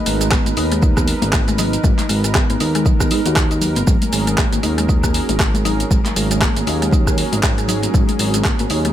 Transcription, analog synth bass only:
0.06 0.38 G#1 loud
0.46 0.53 G#1 medium
0.57 1.14 D#2 medium
1.23 1.78 G#1 medium
1.84 1.93 G#1 loud
2.09 2.41 G#1 loud
2.50 2.56 G#1 medium
2.61 3.13 D#2 medium
3.11 3.20 G#2 medium
3.26 3.78 D#2 medium
3.76 3.83 F#1 loud
3.87 3.97 G#1 loud
4.13 4.44 G#1 loud
4.53 4.60 G#1 medium
4.63 5.20 D#2 medium
5.29 5.84 G#1 medium
5.91 6.00 G#1 loud
6.16 6.48 G#1 loud
6.56 6.63 G#1 medium
6.67 7.24 D#2 loud
7.32 7.88 G#1 medium
7.94 8.03 G#1 loud
8.19 8.51 G#1 loud
8.59 8.66 G#1 medium
8.70 8.93 D#2 medium

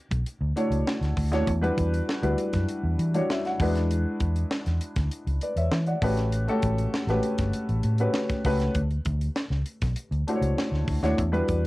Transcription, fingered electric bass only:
0.11 0.22 B1 medium
0.41 0.52 D2 medium
0.70 0.82 C#2 medium
1.01 1.12 D2 medium
1.17 1.31 D2 medium
1.31 1.43 D#2 medium
1.47 1.69 E2 loud
1.77 2.00 E2 medium
2.23 2.34 D2 medium
2.53 2.64 F#2 medium
2.83 2.95 E2 medium
2.98 3.21 E3 medium
3.60 4.04 E2 loud
4.21 4.43 E2 medium
4.67 4.77 E2 medium
4.96 5.07 D2 medium
5.27 5.38 C#2 medium
5.56 5.67 E2 medium
5.71 5.94 E3 loud
6.02 6.47 A1 medium
6.63 6.85 A1 medium
7.07 7.19 A1 medium
7.39 7.50 G1 medium
7.69 7.80 A1 medium
7.84 8.06 A2 medium
8.45 8.67 C#2 medium
8.75 8.97 D2 loud
9.05 9.28 D2 loud
9.50 9.62 C#2 medium
9.82 9.93 B1 medium
10.11 10.22 D2 medium
10.41 10.53 C#2 loud
10.72 10.83 D2 medium
10.87 10.98 D2 medium
11.03 11.14 D#2 medium
11.18 11.40 E2 loud
11.48 11.67 E2 medium

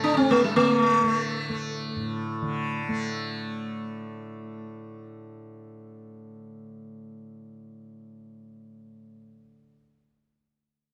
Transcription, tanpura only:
0.00 1.96 A2 medium
0.00 0.56 D3 medium
0.00 0.21 A3 medium
0.21 1.03 A3 medium
0.56 2.42 D3 medium
1.03 1.49 A3 medium
1.49 2.89 A3 medium
1.96 9.11 A2 medium
2.42 9.57 D3 medium
2.89 8.99 A3 medium

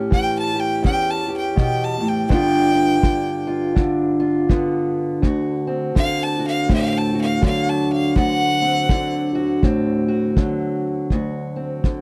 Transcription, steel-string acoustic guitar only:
0.00 0.85 A2 medium
0.00 0.82 C#4 medium
0.00 0.54 G4 medium
0.10 2.27 E3 medium
0.55 1.27 G4 medium
0.82 2.26 E2 medium
0.82 2.27 C#4 medium
1.28 2.27 G4 medium
1.56 2.00 B2 medium
2.01 2.30 A2 medium
2.29 5.19 G2 medium
2.29 3.01 D3 medium
2.29 4.49 B3 medium
2.29 2.74 D4 medium
2.29 3.46 F4 medium
2.74 3.76 D4 medium
3.02 3.74 D3 medium
3.47 4.19 F4 medium
3.75 4.48 D3 medium
3.75 5.67 D4 medium
4.20 5.19 F4 medium
4.49 5.95 D3 medium
4.49 5.20 B3 medium
5.22 8.16 D2 medium
5.22 6.39 F#4 medium
5.67 6.69 C4 medium
5.95 7.41 D3 medium
6.39 7.14 F#4 medium
6.68 7.42 A2 medium
6.68 8.19 C4 medium
7.14 8.16 F#4 medium
7.42 8.88 D3 medium
7.42 10.36 F#3 medium
8.16 11.11 D2 medium
8.16 9.34 F#4 medium
8.62 9.63 C4 medium
8.89 10.36 D3 medium
9.35 10.07 F#4 medium
9.63 10.36 A2 medium
9.63 11.07 C4 medium
10.08 11.07 F#4 medium
10.37 11.83 D3 medium
10.37 12.01 F#3 medium
11.12 12.01 D2 medium
11.12 12.01 F#4 medium
11.56 12.01 C4 medium
11.84 12.01 D3 medium

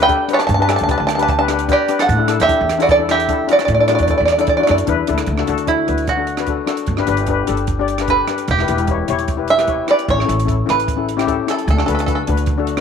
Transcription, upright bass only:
0.00 0.10 D2 medium
0.49 0.76 G2 loud
0.81 0.98 D2 medium
1.00 1.70 D2 medium
2.09 2.36 A2 loud
2.40 2.57 E2 medium
2.61 3.30 E2 medium
3.69 3.95 A2 loud
3.99 4.17 E2 medium
4.20 4.63 E2 medium
4.70 4.87 F#2 medium
4.88 5.06 E2 medium
5.09 5.27 D2 medium
5.27 5.46 D2 loud
5.48 5.83 D2 medium
5.88 6.58 D2 medium
6.88 7.06 G1 medium
7.08 7.43 G1 medium
7.49 8.19 G1 medium
8.48 8.66 E1 loud
8.69 9.04 E1 medium
9.09 9.79 E1 medium
10.08 10.26 A1 loud
10.28 10.64 A1 medium
10.69 11.39 A1 medium
11.68 11.85 D2 loud
11.88 12.23 D2 medium
12.28 12.80 D2 medium

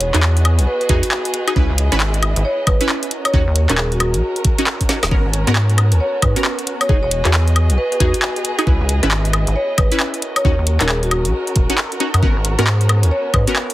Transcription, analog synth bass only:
0.00 0.11 E1 loud
0.14 0.60 E2 medium
0.59 0.66 B1 medium
0.89 1.02 E2 medium
1.56 1.68 C#2 loud
1.70 1.89 C#2 loud
1.92 2.34 G#1 medium
2.36 2.44 G#1 medium
2.67 2.79 G#1 loud
3.34 3.46 D#2 loud
3.47 3.67 D#2 loud
3.70 4.16 D#1 medium
4.14 4.22 A#1 medium
5.03 5.11 D#1 medium
5.11 5.24 G#1 loud
5.25 5.45 G#1 loud
5.47 5.94 G#2 medium
5.92 6.00 D#2 medium
6.23 6.35 G#2 loud
6.89 7.02 E1 loud
7.03 7.22 E1 loud
7.25 7.71 E2 medium
7.70 7.77 B1 medium
8.00 8.13 E2 medium
8.67 8.79 C#2 loud
8.81 9.00 C#2 medium
9.03 9.45 G#1 medium
9.48 9.55 G#1 medium
9.78 9.91 G#1 medium
10.45 10.57 D#2 loud
10.59 10.78 D#2 medium
10.81 11.27 D#1 medium
11.25 11.33 A#1 medium
11.56 11.68 D#1 loud
12.14 12.22 F#2 medium
12.23 12.35 G#1 medium
12.36 12.56 G#1 loud
12.58 13.04 G#2 medium
13.03 13.11 D#2 medium
13.34 13.46 G#2 loud

